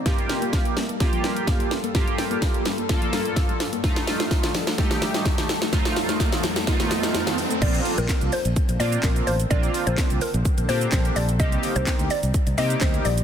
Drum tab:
CC |----------------|----------------|----------------|----------------|
HH |xx-xxx-xxx-xxx-x|xxoxxxoxxxoxxxox|xxoxxxoxxxoxxxox|xxoxxxoxxxoxxxox|
SH |----------------|----------------|----------------|xxxxxxxxxxxxxxxx|
CP |----------------|----------------|----------------|----------------|
SD |o-o-o-o-o-o-o-o-|o-o-o-o-o-o-o-o-|oooooooooooooooo|oooooooooooooo--|
BD |o---o---o---o---|o---o---o---o---|o---o---o---o---|o---o---o-------|

CC |x---------------|----------------|----------------|
HH |xxoxxxoxxxoxxxox|xxoxxxoxxxoxxxox|xxoxxxoxxxoxxxox|
SH |xxxxxxxxxxxxxxxx|xxxxxxxxxxxxxxxx|xxxxxxxxxxxxxxxx|
CP |----x-------x---|----x-------x---|----x-------x---|
SD |----o-------o---|----o-------o---|----o-------o---|
BD |o---o---o---o---|o---o---o---o---|o---o---o---o---|